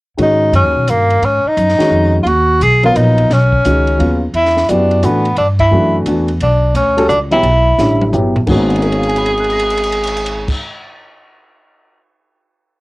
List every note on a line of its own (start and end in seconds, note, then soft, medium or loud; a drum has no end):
0.18 0.52 G#2 medium
0.18 1.15 D#3 medium
0.18 1.15 G#3 soft
0.18 1.15 C#4 soft
0.18 1.16 F#4 medium
0.18 ride medium
0.22 0.53 D#4 medium
0.52 0.64 F#2 medium
0.52 0.91 C#4 medium
0.52 hi-hat pedal soft
0.52 ride medium
0.64 0.75 D#2 medium
0.75 0.87 B1 medium
0.87 1.21 G2 medium
0.87 1.26 A#3 medium
0.87 hi-hat pedal medium
0.87 ride medium
1.10 ride soft
1.22 1.43 G#2 medium
1.22 1.49 C#4 medium
1.22 ride medium
1.45 2.16 D#4 medium
1.45 muted upright bass stroke soft
1.57 1.78 F#2 medium
1.57 hi-hat pedal soft
1.57 ride medium
1.69 snare soft
1.78 2.23 D#3 medium
1.78 2.24 G#3 medium
1.78 2.24 C#4 medium
1.78 2.24 F#4 medium
1.78 muted upright bass stroke soft
1.78 snare soft
1.78 ride medium
1.91 2.24 F2 medium
2.23 2.59 D#2 medium
2.23 2.29 F4 medium
2.23 ride medium
2.27 2.64 F#4 loud
2.60 2.94 B1 medium
2.60 2.84 G#4 loud
2.60 hi-hat pedal medium
2.60 ride medium
2.83 3.28 F#3 medium
2.83 3.28 B3 medium
2.83 3.28 F4 medium
2.83 2.98 F4 medium
2.83 3.28 A#4 medium
2.83 ride soft
2.95 3.29 A#1 medium
2.95 3.34 D#4 medium
2.95 hi-hat pedal medium
2.95 ride medium
3.18 ride soft
3.30 3.64 B1 medium
3.30 4.23 C#4 medium
3.30 snare soft
3.30 ride medium
3.52 kick soft
3.65 3.98 C#2 medium
3.65 3.98 D#3 medium
3.65 3.98 G#3 soft
3.65 3.99 C#4 soft
3.65 3.98 F#4 medium
3.65 hi-hat pedal medium
3.65 ride medium
3.87 ride soft
3.98 4.33 D#2 medium
3.98 4.19 C#3 medium
3.98 4.19 F#3 soft
3.98 4.19 B3 soft
3.98 4.20 F4 medium
3.98 ride soft
4.34 4.67 E2 medium
4.34 4.71 E4 medium
4.34 ride medium
4.46 snare soft
4.57 snare soft
4.69 5.02 F#2 medium
4.69 5.02 B3 soft
4.69 5.06 D4 medium
4.69 5.02 E4 soft
4.69 5.02 F#4 medium
4.69 5.03 G4 medium
4.69 hi-hat pedal medium
4.69 ride medium
4.91 ride soft
5.03 5.36 A2 medium
5.03 5.23 E3 medium
5.03 5.23 A3 medium
5.03 5.37 B3 medium
5.03 5.24 D4 medium
5.03 5.24 F#4 medium
5.03 hi-hat pedal medium
5.03 ride medium
5.25 ride soft
5.37 5.71 G2 medium
5.37 5.48 D4 medium
5.37 ride medium
5.59 5.97 E4 medium
5.59 kick medium
5.59 ride medium
5.71 6.05 F#2 medium
5.71 6.05 E3 medium
5.71 6.05 A3 soft
5.71 6.05 D4 soft
5.71 6.05 F#4 medium
6.06 6.40 E2 medium
6.06 6.27 E3 soft
6.06 6.27 A3 soft
6.06 6.27 D4 soft
6.06 6.27 F#4 medium
6.06 hi-hat pedal soft
6.06 ride medium
6.28 ride soft
6.40 6.74 B1 medium
6.40 6.74 D4 medium
6.40 ride medium
6.74 7.08 D2 medium
6.74 7.08 C#4 medium
6.74 hi-hat pedal medium
6.74 ride medium
6.97 7.08 G3 medium
6.97 7.08 C#4 medium
6.97 7.09 F#4 medium
6.97 7.09 A4 medium
6.97 ride medium
7.09 7.42 C#2 medium
7.09 7.19 D4 medium
7.09 hi-hat pedal medium
7.31 7.42 F#3 medium
7.31 7.43 B3 medium
7.31 8.09 E4 medium
7.31 7.43 E4 medium
7.31 7.43 G4 medium
7.31 ride soft
7.43 7.77 B1 medium
7.43 ride medium
7.78 8.12 A1 medium
7.78 8.12 D3 medium
7.78 8.12 G3 medium
7.78 8.12 C#4 soft
7.78 8.12 E4 medium
7.78 snare soft
7.78 hi-hat pedal soft
8.01 high tom medium
8.12 8.46 G1 medium
8.12 8.33 F#3 medium
8.12 8.33 B3 soft
8.12 8.33 E4 soft
8.12 8.34 G4 medium
8.12 floor tom medium
8.12 hi-hat pedal medium
8.36 floor tom medium
8.47 10.50 G#1 medium
8.47 10.53 G#2 medium
8.47 10.53 D#3 medium
8.47 10.54 A#3 medium
8.47 10.54 B3 medium
8.47 10.54 C#4 medium
8.47 10.55 F#4 medium
8.47 10.51 G#4 medium
8.47 kick loud
8.47 crash medium
8.70 crash soft
8.76 ride soft
8.82 10.50 A#4 soft
8.82 crash soft
8.90 10.54 C#5 soft
8.90 ride soft
8.98 10.58 F5 soft
9.03 crash soft
9.07 10.62 G#5 soft
9.07 ride soft
9.16 10.67 B5 soft
9.16 crash medium
9.26 10.73 D#6 soft
9.26 ride medium
9.37 10.79 F#6 soft
9.37 crash medium
9.44 ride medium
9.50 10.85 A#6 soft
9.50 crash medium
9.59 ride medium
9.70 crash medium
9.77 ride medium
9.83 crash medium
9.92 ride medium
10.03 ride medium
10.03 crash medium
10.16 crash medium
10.26 ride medium
10.48 kick medium
10.48 crash medium